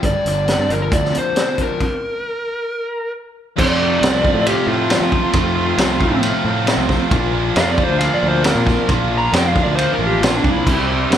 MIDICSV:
0, 0, Header, 1, 6, 480
1, 0, Start_track
1, 0, Tempo, 443131
1, 24, Time_signature, 4, 2, 24, 8
1, 12107, End_track
2, 0, Start_track
2, 0, Title_t, "Lead electric guitar"
2, 0, Program_c, 0, 29
2, 56, Note_on_c, 0, 74, 102
2, 288, Note_off_c, 0, 74, 0
2, 305, Note_on_c, 0, 74, 91
2, 767, Note_on_c, 0, 70, 71
2, 780, Note_off_c, 0, 74, 0
2, 880, Note_off_c, 0, 70, 0
2, 895, Note_on_c, 0, 70, 66
2, 994, Note_off_c, 0, 70, 0
2, 1008, Note_on_c, 0, 74, 92
2, 1245, Note_off_c, 0, 74, 0
2, 1275, Note_on_c, 0, 72, 95
2, 1746, Note_off_c, 0, 72, 0
2, 1759, Note_on_c, 0, 70, 66
2, 3373, Note_off_c, 0, 70, 0
2, 3889, Note_on_c, 0, 74, 108
2, 4810, Note_off_c, 0, 74, 0
2, 4838, Note_on_c, 0, 67, 91
2, 5053, Note_on_c, 0, 65, 87
2, 5066, Note_off_c, 0, 67, 0
2, 5293, Note_off_c, 0, 65, 0
2, 5317, Note_on_c, 0, 65, 90
2, 6706, Note_off_c, 0, 65, 0
2, 8193, Note_on_c, 0, 77, 117
2, 8324, Note_on_c, 0, 74, 78
2, 8343, Note_off_c, 0, 77, 0
2, 8488, Note_off_c, 0, 74, 0
2, 8488, Note_on_c, 0, 72, 70
2, 8649, Note_on_c, 0, 77, 116
2, 8650, Note_off_c, 0, 72, 0
2, 8811, Note_off_c, 0, 77, 0
2, 8819, Note_on_c, 0, 74, 94
2, 8971, Note_off_c, 0, 74, 0
2, 8971, Note_on_c, 0, 72, 88
2, 9129, Note_on_c, 0, 70, 101
2, 9131, Note_off_c, 0, 72, 0
2, 9601, Note_off_c, 0, 70, 0
2, 9942, Note_on_c, 0, 82, 102
2, 10097, Note_off_c, 0, 82, 0
2, 10113, Note_on_c, 0, 79, 89
2, 10264, Note_off_c, 0, 79, 0
2, 10264, Note_on_c, 0, 77, 92
2, 10418, Note_off_c, 0, 77, 0
2, 10435, Note_on_c, 0, 74, 77
2, 10567, Note_off_c, 0, 74, 0
2, 10571, Note_on_c, 0, 72, 91
2, 10731, Note_off_c, 0, 72, 0
2, 10760, Note_on_c, 0, 70, 80
2, 10903, Note_off_c, 0, 70, 0
2, 10903, Note_on_c, 0, 67, 82
2, 11064, Note_off_c, 0, 67, 0
2, 11064, Note_on_c, 0, 65, 87
2, 11233, Note_off_c, 0, 65, 0
2, 11233, Note_on_c, 0, 62, 73
2, 11382, Note_off_c, 0, 62, 0
2, 11389, Note_on_c, 0, 64, 95
2, 11618, Note_off_c, 0, 64, 0
2, 12107, End_track
3, 0, Start_track
3, 0, Title_t, "Distorted electric guitar"
3, 0, Program_c, 1, 30
3, 3907, Note_on_c, 1, 65, 97
3, 4104, Note_off_c, 1, 65, 0
3, 4108, Note_on_c, 1, 65, 67
3, 4384, Note_off_c, 1, 65, 0
3, 4388, Note_on_c, 1, 65, 78
3, 4592, Note_off_c, 1, 65, 0
3, 4596, Note_on_c, 1, 65, 78
3, 5062, Note_off_c, 1, 65, 0
3, 5066, Note_on_c, 1, 65, 61
3, 5078, Note_on_c, 1, 60, 64
3, 5085, Note_on_c, 1, 57, 56
3, 5100, Note_on_c, 1, 53, 57
3, 5299, Note_off_c, 1, 57, 0
3, 5299, Note_on_c, 1, 41, 104
3, 5307, Note_off_c, 1, 53, 0
3, 5308, Note_off_c, 1, 60, 0
3, 5324, Note_off_c, 1, 65, 0
3, 5328, Note_on_c, 1, 65, 104
3, 5768, Note_off_c, 1, 41, 0
3, 5798, Note_off_c, 1, 65, 0
3, 5802, Note_on_c, 1, 65, 89
3, 6011, Note_off_c, 1, 65, 0
3, 6016, Note_on_c, 1, 65, 79
3, 6274, Note_off_c, 1, 65, 0
3, 6278, Note_on_c, 1, 65, 90
3, 6489, Note_off_c, 1, 65, 0
3, 6494, Note_on_c, 1, 65, 73
3, 6984, Note_off_c, 1, 65, 0
3, 6988, Note_on_c, 1, 65, 75
3, 7000, Note_on_c, 1, 60, 73
3, 7008, Note_on_c, 1, 57, 70
3, 7018, Note_on_c, 1, 53, 64
3, 7213, Note_on_c, 1, 41, 98
3, 7222, Note_off_c, 1, 57, 0
3, 7225, Note_off_c, 1, 53, 0
3, 7225, Note_off_c, 1, 60, 0
3, 7244, Note_off_c, 1, 65, 0
3, 7248, Note_on_c, 1, 65, 115
3, 7683, Note_off_c, 1, 41, 0
3, 7706, Note_off_c, 1, 65, 0
3, 7711, Note_on_c, 1, 65, 105
3, 7932, Note_off_c, 1, 65, 0
3, 7937, Note_on_c, 1, 65, 77
3, 8204, Note_off_c, 1, 65, 0
3, 8208, Note_on_c, 1, 65, 96
3, 8411, Note_off_c, 1, 65, 0
3, 8415, Note_on_c, 1, 65, 71
3, 8883, Note_off_c, 1, 65, 0
3, 8896, Note_on_c, 1, 65, 73
3, 8917, Note_on_c, 1, 62, 56
3, 8927, Note_on_c, 1, 58, 70
3, 9140, Note_off_c, 1, 58, 0
3, 9147, Note_off_c, 1, 62, 0
3, 9151, Note_off_c, 1, 65, 0
3, 9164, Note_on_c, 1, 65, 99
3, 9644, Note_off_c, 1, 65, 0
3, 9657, Note_on_c, 1, 65, 112
3, 9868, Note_off_c, 1, 65, 0
3, 9881, Note_on_c, 1, 65, 85
3, 9894, Note_on_c, 1, 62, 71
3, 9907, Note_on_c, 1, 58, 64
3, 10114, Note_off_c, 1, 58, 0
3, 10122, Note_off_c, 1, 62, 0
3, 10132, Note_off_c, 1, 65, 0
3, 10145, Note_on_c, 1, 65, 91
3, 10341, Note_off_c, 1, 65, 0
3, 10354, Note_on_c, 1, 65, 63
3, 10381, Note_on_c, 1, 62, 71
3, 10388, Note_on_c, 1, 58, 57
3, 10804, Note_off_c, 1, 65, 0
3, 10817, Note_on_c, 1, 65, 74
3, 10821, Note_off_c, 1, 62, 0
3, 10834, Note_off_c, 1, 58, 0
3, 10834, Note_on_c, 1, 62, 64
3, 10847, Note_on_c, 1, 58, 50
3, 11082, Note_off_c, 1, 58, 0
3, 11085, Note_off_c, 1, 62, 0
3, 11096, Note_off_c, 1, 65, 0
3, 11109, Note_on_c, 1, 65, 106
3, 11551, Note_off_c, 1, 65, 0
3, 11593, Note_on_c, 1, 64, 110
3, 11798, Note_off_c, 1, 64, 0
3, 12107, End_track
4, 0, Start_track
4, 0, Title_t, "Distorted electric guitar"
4, 0, Program_c, 2, 30
4, 0, Note_on_c, 2, 55, 61
4, 16, Note_on_c, 2, 43, 59
4, 268, Note_on_c, 2, 50, 54
4, 485, Note_off_c, 2, 50, 0
4, 498, Note_on_c, 2, 50, 72
4, 734, Note_off_c, 2, 55, 0
4, 739, Note_on_c, 2, 53, 61
4, 973, Note_off_c, 2, 50, 0
4, 986, Note_on_c, 2, 50, 64
4, 1217, Note_on_c, 2, 58, 64
4, 1224, Note_off_c, 2, 43, 0
4, 1471, Note_on_c, 2, 62, 78
4, 1702, Note_off_c, 2, 53, 0
4, 1715, Note_on_c, 2, 53, 64
4, 1944, Note_off_c, 2, 58, 0
4, 1949, Note_off_c, 2, 50, 0
4, 1951, Note_off_c, 2, 62, 0
4, 1952, Note_off_c, 2, 53, 0
4, 3858, Note_on_c, 2, 41, 88
4, 3866, Note_on_c, 2, 48, 99
4, 3874, Note_on_c, 2, 57, 100
4, 3876, Note_on_c, 2, 53, 93
4, 3883, Note_on_c, 2, 60, 91
4, 4093, Note_off_c, 2, 60, 0
4, 4098, Note_on_c, 2, 60, 66
4, 4108, Note_off_c, 2, 57, 0
4, 4112, Note_on_c, 2, 57, 60
4, 4117, Note_off_c, 2, 53, 0
4, 4122, Note_on_c, 2, 53, 57
4, 4326, Note_off_c, 2, 48, 0
4, 4339, Note_on_c, 2, 48, 78
4, 4350, Note_off_c, 2, 53, 0
4, 4352, Note_off_c, 2, 57, 0
4, 4354, Note_on_c, 2, 53, 81
4, 4356, Note_on_c, 2, 57, 77
4, 4364, Note_off_c, 2, 60, 0
4, 4369, Note_on_c, 2, 60, 96
4, 4582, Note_off_c, 2, 60, 0
4, 4586, Note_on_c, 2, 60, 79
4, 4594, Note_off_c, 2, 57, 0
4, 4599, Note_on_c, 2, 57, 70
4, 4602, Note_off_c, 2, 53, 0
4, 4606, Note_on_c, 2, 53, 65
4, 4813, Note_off_c, 2, 48, 0
4, 4815, Note_off_c, 2, 41, 0
4, 4819, Note_on_c, 2, 41, 81
4, 4821, Note_off_c, 2, 57, 0
4, 4824, Note_off_c, 2, 53, 0
4, 4826, Note_on_c, 2, 48, 106
4, 4827, Note_off_c, 2, 60, 0
4, 4829, Note_on_c, 2, 53, 90
4, 4834, Note_on_c, 2, 57, 112
4, 4840, Note_on_c, 2, 60, 98
4, 5280, Note_off_c, 2, 48, 0
4, 5293, Note_on_c, 2, 48, 76
4, 5295, Note_off_c, 2, 57, 0
4, 5296, Note_off_c, 2, 53, 0
4, 5296, Note_off_c, 2, 60, 0
4, 5301, Note_on_c, 2, 53, 78
4, 5308, Note_on_c, 2, 57, 82
4, 5309, Note_on_c, 2, 60, 95
4, 5524, Note_off_c, 2, 60, 0
4, 5537, Note_on_c, 2, 60, 70
4, 5539, Note_off_c, 2, 57, 0
4, 5543, Note_off_c, 2, 41, 0
4, 5552, Note_off_c, 2, 53, 0
4, 5552, Note_on_c, 2, 57, 61
4, 5557, Note_on_c, 2, 53, 59
4, 5768, Note_off_c, 2, 48, 0
4, 5777, Note_on_c, 2, 41, 88
4, 5781, Note_on_c, 2, 48, 86
4, 5783, Note_off_c, 2, 57, 0
4, 5784, Note_off_c, 2, 60, 0
4, 5787, Note_off_c, 2, 53, 0
4, 5792, Note_on_c, 2, 53, 98
4, 5796, Note_on_c, 2, 57, 110
4, 5797, Note_on_c, 2, 60, 107
4, 6004, Note_off_c, 2, 60, 0
4, 6017, Note_on_c, 2, 60, 66
4, 6018, Note_off_c, 2, 57, 0
4, 6031, Note_on_c, 2, 57, 61
4, 6033, Note_off_c, 2, 53, 0
4, 6037, Note_on_c, 2, 53, 60
4, 6249, Note_off_c, 2, 48, 0
4, 6261, Note_off_c, 2, 41, 0
4, 6262, Note_on_c, 2, 48, 82
4, 6266, Note_off_c, 2, 57, 0
4, 6268, Note_off_c, 2, 60, 0
4, 6270, Note_off_c, 2, 53, 0
4, 6274, Note_on_c, 2, 53, 76
4, 6279, Note_on_c, 2, 57, 92
4, 6281, Note_on_c, 2, 60, 79
4, 6479, Note_off_c, 2, 60, 0
4, 6492, Note_on_c, 2, 60, 80
4, 6494, Note_off_c, 2, 57, 0
4, 6507, Note_on_c, 2, 57, 76
4, 6510, Note_off_c, 2, 53, 0
4, 6515, Note_on_c, 2, 53, 74
4, 6725, Note_off_c, 2, 48, 0
4, 6730, Note_off_c, 2, 57, 0
4, 6730, Note_on_c, 2, 41, 98
4, 6737, Note_off_c, 2, 53, 0
4, 6737, Note_off_c, 2, 60, 0
4, 6738, Note_on_c, 2, 48, 96
4, 6741, Note_on_c, 2, 53, 103
4, 6743, Note_on_c, 2, 57, 109
4, 6750, Note_on_c, 2, 60, 121
4, 7196, Note_off_c, 2, 48, 0
4, 7207, Note_off_c, 2, 57, 0
4, 7209, Note_on_c, 2, 48, 77
4, 7211, Note_off_c, 2, 53, 0
4, 7215, Note_on_c, 2, 53, 86
4, 7218, Note_off_c, 2, 60, 0
4, 7220, Note_on_c, 2, 57, 86
4, 7231, Note_on_c, 2, 60, 95
4, 7435, Note_off_c, 2, 60, 0
4, 7448, Note_on_c, 2, 60, 78
4, 7452, Note_off_c, 2, 57, 0
4, 7456, Note_off_c, 2, 41, 0
4, 7465, Note_on_c, 2, 57, 76
4, 7466, Note_off_c, 2, 53, 0
4, 7471, Note_on_c, 2, 53, 66
4, 7681, Note_off_c, 2, 48, 0
4, 7681, Note_off_c, 2, 60, 0
4, 7689, Note_on_c, 2, 46, 105
4, 7690, Note_off_c, 2, 57, 0
4, 7693, Note_off_c, 2, 53, 0
4, 7698, Note_on_c, 2, 53, 96
4, 7704, Note_on_c, 2, 58, 102
4, 7711, Note_on_c, 2, 62, 99
4, 7924, Note_off_c, 2, 62, 0
4, 7928, Note_on_c, 2, 62, 68
4, 7936, Note_off_c, 2, 58, 0
4, 7940, Note_on_c, 2, 58, 58
4, 7947, Note_off_c, 2, 53, 0
4, 7951, Note_on_c, 2, 53, 54
4, 8168, Note_off_c, 2, 46, 0
4, 8173, Note_off_c, 2, 53, 0
4, 8173, Note_on_c, 2, 46, 78
4, 8177, Note_on_c, 2, 53, 77
4, 8181, Note_off_c, 2, 58, 0
4, 8182, Note_off_c, 2, 62, 0
4, 8185, Note_on_c, 2, 58, 99
4, 8186, Note_on_c, 2, 62, 89
4, 8406, Note_off_c, 2, 62, 0
4, 8410, Note_on_c, 2, 62, 68
4, 8418, Note_off_c, 2, 58, 0
4, 8423, Note_on_c, 2, 58, 76
4, 8429, Note_off_c, 2, 53, 0
4, 8433, Note_on_c, 2, 53, 72
4, 8646, Note_off_c, 2, 53, 0
4, 8647, Note_off_c, 2, 46, 0
4, 8650, Note_off_c, 2, 58, 0
4, 8651, Note_on_c, 2, 46, 104
4, 8656, Note_off_c, 2, 62, 0
4, 8659, Note_on_c, 2, 53, 93
4, 8663, Note_on_c, 2, 58, 116
4, 8669, Note_on_c, 2, 62, 94
4, 9110, Note_off_c, 2, 46, 0
4, 9118, Note_off_c, 2, 53, 0
4, 9123, Note_off_c, 2, 58, 0
4, 9123, Note_on_c, 2, 46, 77
4, 9131, Note_on_c, 2, 53, 87
4, 9134, Note_off_c, 2, 62, 0
4, 9136, Note_on_c, 2, 58, 81
4, 9147, Note_on_c, 2, 62, 76
4, 9351, Note_off_c, 2, 62, 0
4, 9364, Note_off_c, 2, 58, 0
4, 9364, Note_on_c, 2, 62, 73
4, 9373, Note_off_c, 2, 53, 0
4, 9377, Note_on_c, 2, 58, 72
4, 9386, Note_on_c, 2, 53, 62
4, 9584, Note_off_c, 2, 46, 0
4, 9595, Note_off_c, 2, 53, 0
4, 9597, Note_on_c, 2, 46, 92
4, 9602, Note_off_c, 2, 58, 0
4, 9608, Note_on_c, 2, 53, 95
4, 9609, Note_off_c, 2, 62, 0
4, 9615, Note_on_c, 2, 58, 106
4, 9622, Note_on_c, 2, 62, 109
4, 9817, Note_off_c, 2, 62, 0
4, 9830, Note_on_c, 2, 62, 71
4, 9832, Note_off_c, 2, 58, 0
4, 9839, Note_off_c, 2, 53, 0
4, 9845, Note_on_c, 2, 58, 56
4, 9852, Note_on_c, 2, 53, 59
4, 10077, Note_off_c, 2, 46, 0
4, 10085, Note_off_c, 2, 53, 0
4, 10088, Note_off_c, 2, 58, 0
4, 10090, Note_on_c, 2, 46, 78
4, 10096, Note_off_c, 2, 62, 0
4, 10098, Note_on_c, 2, 53, 84
4, 10101, Note_on_c, 2, 58, 80
4, 10109, Note_on_c, 2, 62, 100
4, 10314, Note_off_c, 2, 62, 0
4, 10325, Note_off_c, 2, 58, 0
4, 10327, Note_on_c, 2, 62, 84
4, 10334, Note_off_c, 2, 53, 0
4, 10338, Note_on_c, 2, 58, 69
4, 10347, Note_on_c, 2, 53, 64
4, 10565, Note_off_c, 2, 46, 0
4, 10572, Note_off_c, 2, 53, 0
4, 10578, Note_off_c, 2, 58, 0
4, 10578, Note_on_c, 2, 46, 89
4, 10584, Note_off_c, 2, 62, 0
4, 10585, Note_on_c, 2, 53, 95
4, 10591, Note_on_c, 2, 58, 87
4, 10597, Note_on_c, 2, 62, 103
4, 11040, Note_off_c, 2, 46, 0
4, 11052, Note_off_c, 2, 53, 0
4, 11053, Note_on_c, 2, 46, 80
4, 11055, Note_off_c, 2, 58, 0
4, 11061, Note_off_c, 2, 62, 0
4, 11065, Note_on_c, 2, 53, 86
4, 11068, Note_on_c, 2, 58, 83
4, 11074, Note_on_c, 2, 62, 94
4, 11291, Note_off_c, 2, 62, 0
4, 11300, Note_off_c, 2, 58, 0
4, 11304, Note_on_c, 2, 62, 82
4, 11310, Note_off_c, 2, 53, 0
4, 11313, Note_on_c, 2, 58, 70
4, 11323, Note_on_c, 2, 53, 57
4, 11523, Note_off_c, 2, 46, 0
4, 11527, Note_off_c, 2, 53, 0
4, 11528, Note_off_c, 2, 62, 0
4, 11531, Note_on_c, 2, 48, 93
4, 11531, Note_on_c, 2, 55, 106
4, 11533, Note_off_c, 2, 58, 0
4, 11545, Note_on_c, 2, 60, 103
4, 11548, Note_on_c, 2, 64, 85
4, 11766, Note_off_c, 2, 64, 0
4, 11770, Note_on_c, 2, 64, 67
4, 11779, Note_off_c, 2, 60, 0
4, 11784, Note_on_c, 2, 60, 63
4, 11790, Note_off_c, 2, 55, 0
4, 11794, Note_on_c, 2, 55, 62
4, 12005, Note_off_c, 2, 48, 0
4, 12010, Note_off_c, 2, 55, 0
4, 12010, Note_on_c, 2, 48, 76
4, 12014, Note_on_c, 2, 55, 80
4, 12022, Note_off_c, 2, 60, 0
4, 12024, Note_off_c, 2, 64, 0
4, 12026, Note_on_c, 2, 60, 86
4, 12029, Note_on_c, 2, 64, 80
4, 12107, Note_off_c, 2, 48, 0
4, 12107, Note_off_c, 2, 55, 0
4, 12107, Note_off_c, 2, 60, 0
4, 12107, Note_off_c, 2, 64, 0
4, 12107, End_track
5, 0, Start_track
5, 0, Title_t, "Fingered electric bass"
5, 0, Program_c, 3, 33
5, 35, Note_on_c, 3, 31, 90
5, 136, Note_off_c, 3, 31, 0
5, 277, Note_on_c, 3, 31, 74
5, 589, Note_off_c, 3, 31, 0
5, 634, Note_on_c, 3, 43, 74
5, 737, Note_off_c, 3, 43, 0
5, 760, Note_on_c, 3, 31, 74
5, 966, Note_off_c, 3, 31, 0
5, 992, Note_on_c, 3, 38, 80
5, 1202, Note_off_c, 3, 38, 0
5, 3885, Note_on_c, 3, 41, 97
5, 4300, Note_off_c, 3, 41, 0
5, 4345, Note_on_c, 3, 36, 90
5, 4663, Note_off_c, 3, 36, 0
5, 4703, Note_on_c, 3, 45, 84
5, 4917, Note_off_c, 3, 45, 0
5, 5058, Note_on_c, 3, 45, 88
5, 5379, Note_off_c, 3, 45, 0
5, 5422, Note_on_c, 3, 53, 77
5, 5635, Note_off_c, 3, 53, 0
5, 5780, Note_on_c, 3, 41, 112
5, 6204, Note_off_c, 3, 41, 0
5, 6258, Note_on_c, 3, 36, 93
5, 6578, Note_off_c, 3, 36, 0
5, 6618, Note_on_c, 3, 45, 81
5, 6832, Note_off_c, 3, 45, 0
5, 6981, Note_on_c, 3, 45, 87
5, 7299, Note_off_c, 3, 45, 0
5, 7334, Note_on_c, 3, 36, 79
5, 7549, Note_off_c, 3, 36, 0
5, 7700, Note_on_c, 3, 34, 105
5, 8123, Note_off_c, 3, 34, 0
5, 8188, Note_on_c, 3, 41, 84
5, 8502, Note_off_c, 3, 41, 0
5, 8540, Note_on_c, 3, 38, 80
5, 8752, Note_off_c, 3, 38, 0
5, 8912, Note_on_c, 3, 38, 93
5, 9224, Note_off_c, 3, 38, 0
5, 9263, Note_on_c, 3, 46, 82
5, 9473, Note_off_c, 3, 46, 0
5, 9628, Note_on_c, 3, 34, 100
5, 10047, Note_off_c, 3, 34, 0
5, 10101, Note_on_c, 3, 41, 90
5, 10418, Note_off_c, 3, 41, 0
5, 10452, Note_on_c, 3, 38, 83
5, 10667, Note_off_c, 3, 38, 0
5, 10817, Note_on_c, 3, 33, 88
5, 11035, Note_off_c, 3, 33, 0
5, 11058, Note_on_c, 3, 34, 83
5, 11275, Note_off_c, 3, 34, 0
5, 11306, Note_on_c, 3, 36, 83
5, 11520, Note_off_c, 3, 36, 0
5, 11551, Note_on_c, 3, 36, 96
5, 11969, Note_off_c, 3, 36, 0
5, 12029, Note_on_c, 3, 43, 100
5, 12107, Note_off_c, 3, 43, 0
5, 12107, End_track
6, 0, Start_track
6, 0, Title_t, "Drums"
6, 32, Note_on_c, 9, 36, 90
6, 32, Note_on_c, 9, 42, 65
6, 140, Note_off_c, 9, 42, 0
6, 141, Note_off_c, 9, 36, 0
6, 279, Note_on_c, 9, 42, 54
6, 388, Note_off_c, 9, 42, 0
6, 517, Note_on_c, 9, 42, 68
6, 526, Note_on_c, 9, 38, 93
6, 625, Note_off_c, 9, 42, 0
6, 635, Note_off_c, 9, 38, 0
6, 759, Note_on_c, 9, 42, 51
6, 867, Note_off_c, 9, 42, 0
6, 994, Note_on_c, 9, 36, 113
6, 1001, Note_on_c, 9, 42, 70
6, 1103, Note_off_c, 9, 36, 0
6, 1110, Note_off_c, 9, 42, 0
6, 1134, Note_on_c, 9, 38, 30
6, 1241, Note_on_c, 9, 42, 60
6, 1243, Note_off_c, 9, 38, 0
6, 1350, Note_off_c, 9, 42, 0
6, 1472, Note_on_c, 9, 42, 79
6, 1482, Note_on_c, 9, 38, 105
6, 1580, Note_off_c, 9, 42, 0
6, 1590, Note_off_c, 9, 38, 0
6, 1710, Note_on_c, 9, 42, 54
6, 1713, Note_on_c, 9, 36, 72
6, 1818, Note_off_c, 9, 42, 0
6, 1821, Note_off_c, 9, 36, 0
6, 1953, Note_on_c, 9, 49, 66
6, 1955, Note_on_c, 9, 36, 84
6, 2062, Note_off_c, 9, 49, 0
6, 2063, Note_off_c, 9, 36, 0
6, 3883, Note_on_c, 9, 36, 94
6, 3885, Note_on_c, 9, 49, 110
6, 3991, Note_off_c, 9, 36, 0
6, 3993, Note_off_c, 9, 49, 0
6, 4363, Note_on_c, 9, 53, 69
6, 4373, Note_on_c, 9, 38, 105
6, 4471, Note_off_c, 9, 53, 0
6, 4481, Note_off_c, 9, 38, 0
6, 4598, Note_on_c, 9, 36, 88
6, 4707, Note_off_c, 9, 36, 0
6, 4836, Note_on_c, 9, 53, 90
6, 4944, Note_off_c, 9, 53, 0
6, 5308, Note_on_c, 9, 53, 76
6, 5318, Note_on_c, 9, 38, 107
6, 5416, Note_off_c, 9, 53, 0
6, 5426, Note_off_c, 9, 38, 0
6, 5547, Note_on_c, 9, 36, 92
6, 5655, Note_off_c, 9, 36, 0
6, 5777, Note_on_c, 9, 53, 71
6, 5785, Note_on_c, 9, 36, 92
6, 5886, Note_off_c, 9, 53, 0
6, 5893, Note_off_c, 9, 36, 0
6, 6264, Note_on_c, 9, 53, 78
6, 6274, Note_on_c, 9, 38, 107
6, 6373, Note_off_c, 9, 53, 0
6, 6382, Note_off_c, 9, 38, 0
6, 6505, Note_on_c, 9, 36, 91
6, 6613, Note_off_c, 9, 36, 0
6, 6745, Note_on_c, 9, 53, 75
6, 6853, Note_off_c, 9, 53, 0
6, 7225, Note_on_c, 9, 53, 75
6, 7234, Note_on_c, 9, 38, 107
6, 7333, Note_off_c, 9, 53, 0
6, 7343, Note_off_c, 9, 38, 0
6, 7464, Note_on_c, 9, 36, 85
6, 7476, Note_on_c, 9, 38, 36
6, 7572, Note_off_c, 9, 36, 0
6, 7584, Note_off_c, 9, 38, 0
6, 7705, Note_on_c, 9, 36, 110
6, 7705, Note_on_c, 9, 53, 67
6, 7813, Note_off_c, 9, 36, 0
6, 7813, Note_off_c, 9, 53, 0
6, 8187, Note_on_c, 9, 53, 77
6, 8197, Note_on_c, 9, 38, 100
6, 8295, Note_off_c, 9, 53, 0
6, 8305, Note_off_c, 9, 38, 0
6, 8426, Note_on_c, 9, 36, 95
6, 8534, Note_off_c, 9, 36, 0
6, 8671, Note_on_c, 9, 53, 84
6, 8779, Note_off_c, 9, 53, 0
6, 9144, Note_on_c, 9, 53, 78
6, 9154, Note_on_c, 9, 38, 107
6, 9252, Note_off_c, 9, 53, 0
6, 9262, Note_off_c, 9, 38, 0
6, 9387, Note_on_c, 9, 36, 97
6, 9396, Note_on_c, 9, 38, 35
6, 9495, Note_off_c, 9, 36, 0
6, 9504, Note_off_c, 9, 38, 0
6, 9628, Note_on_c, 9, 36, 105
6, 9628, Note_on_c, 9, 53, 66
6, 9736, Note_off_c, 9, 53, 0
6, 9737, Note_off_c, 9, 36, 0
6, 10111, Note_on_c, 9, 53, 74
6, 10121, Note_on_c, 9, 38, 105
6, 10219, Note_off_c, 9, 53, 0
6, 10229, Note_off_c, 9, 38, 0
6, 10352, Note_on_c, 9, 36, 91
6, 10460, Note_off_c, 9, 36, 0
6, 10598, Note_on_c, 9, 53, 81
6, 10707, Note_off_c, 9, 53, 0
6, 11080, Note_on_c, 9, 53, 77
6, 11090, Note_on_c, 9, 38, 123
6, 11189, Note_off_c, 9, 53, 0
6, 11198, Note_off_c, 9, 38, 0
6, 11313, Note_on_c, 9, 36, 87
6, 11421, Note_off_c, 9, 36, 0
6, 11554, Note_on_c, 9, 36, 92
6, 11556, Note_on_c, 9, 49, 95
6, 11663, Note_off_c, 9, 36, 0
6, 11664, Note_off_c, 9, 49, 0
6, 12042, Note_on_c, 9, 53, 66
6, 12052, Note_on_c, 9, 38, 118
6, 12107, Note_off_c, 9, 38, 0
6, 12107, Note_off_c, 9, 53, 0
6, 12107, End_track
0, 0, End_of_file